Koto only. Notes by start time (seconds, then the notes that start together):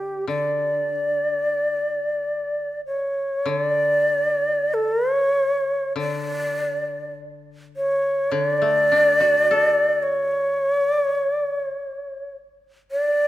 Already playing: D3
0.27 D3
3.46 D3
5.96 D3
8.32 D3
8.62 A3
8.92 D4
9.20 F#4
9.51 A4